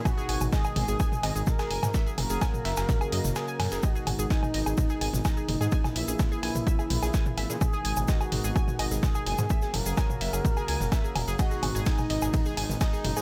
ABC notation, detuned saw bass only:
X:1
M:4/4
L:1/16
Q:1/4=127
K:G#m
V:1 name="Detuned saw bass" clef=bass
z2 G,,, G,,, z2 G,,, G,,, z2 G,,, G,,, z2 F,,, G,, | z2 F,,, F,,, z2 F,,, F,,, z2 F,, F,,, z2 F,, F,,, | z2 G,,, G,,, z2 G,,, G,,, z2 G,,, G,,, z2 F,,, G,, | z2 A,,, A,,, z2 A,,, A,,, z2 A,,, A,,, z2 G,,, A,, |
z2 G,,, G,,, z2 G,,, G,,, z2 G,,, G,,, z2 F,,, G,, | z2 F,,, F,,, z2 F,,, F,,, z2 C,, F,,, z2 E,,, F,,, | z2 G,,, G,,, z2 G,,, G,,, z2 G,,, G,,, z2 F,,, G,, |]